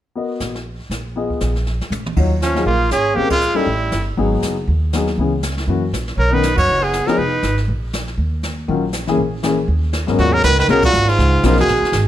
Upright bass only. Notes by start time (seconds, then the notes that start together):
0.40 A#1
0.90 A#1
1.41 A#1
1.90 A#1
2.16 D#2
2.66 A#1
2.91 G#1
3.16 A#1
3.56 muted upright bass stroke
3.66 A1
3.92 G1
4.17 G#1
4.42 F#1
4.68 D#2
5.18 C#2
5.67 F#2
5.92 A#1
6.17 B1
6.57 F#2
6.68 F#1
7.07 muted upright bass stroke
7.18 F1
7.43 G#1
7.68 A#1
8.18 D#2
8.68 A#1
9.17 A#1
9.68 D#2
10.08 A#1
10.18 D#2
10.43 C#2
10.68 B1
10.93 G#1
11.18 C#2
11.43 B1
11.68 A#1
11.82 muted upright bass stroke
11.92 G#1